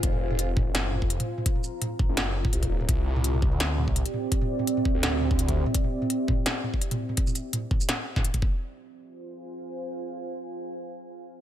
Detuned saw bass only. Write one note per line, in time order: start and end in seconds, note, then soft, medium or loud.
0.03 0.68 F1 loud
0.66 1.03 F#1 medium
1.02 1.18 F1 loud
2.09 2.44 F#1 medium
2.53 2.64 C2 medium
2.63 2.88 D#1 loud
2.88 3.53 C2 medium
3.52 3.89 D2 medium
3.88 4.04 C2 loud
4.95 5.29 D2 medium
5.31 5.65 D2 medium